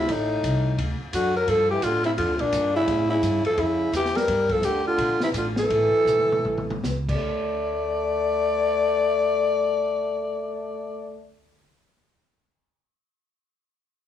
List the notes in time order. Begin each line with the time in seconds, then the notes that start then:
Already playing: C3
0.00 E4
0.09 A1 A2 D#4, kick, ride
0.43 C2, kick, hi-hat pedal, ride
0.78 D2, kick, ride
1.01 muted upright bass stroke
1.13 F#2 D3 F#4, kick, hi-hat pedal, ride
1.37 F#3 A#4
1.47 G2 F3 A4, kick, ride
1.71 E3 G4
1.82 A2 D3 F4, kick, hi-hat pedal, ride
2.04 C3 E4, ride
2.17 F2 D3 F4, kick, ride
2.29 D2
2.39 A#1 A#2 D4, ride
2.52 G2, kick, hi-hat pedal, ride
2.74 C#3 E4
2.87 A2, kick, ride
3.09 C#3 E4
3.22 G2, kick, hi-hat pedal, ride
3.45 F3 A4, muted upright bass stroke, ride
3.57 F2 C#3 E4, kick, ride
3.92 E2 E3, kick, hi-hat pedal, ride
3.96 G4
4.05 snare
4.15 G3 A#4, snare, ride
4.28 G2, kick, ride
4.49 F3 A4, kick, ride
4.62 D2 D3 G4, kick, hi-hat pedal, ride
4.86 D3 F4
4.98 A#1, kick, ride
5.20 C3 E4, snare
5.33 A1 D3, kick, hi-hat pedal, ride
5.38 F4
5.56 E3 A4, snare
5.70 A1, kick, ride
6.05 A#1, hi-hat pedal, mid tom
6.19 mid tom
6.32 mid tom
6.45 A1, mid tom
6.58 mid tom
6.70 mid tom
6.83 C#2, snare, hi-hat pedal
7.08 D2 A3 D5, kick, crash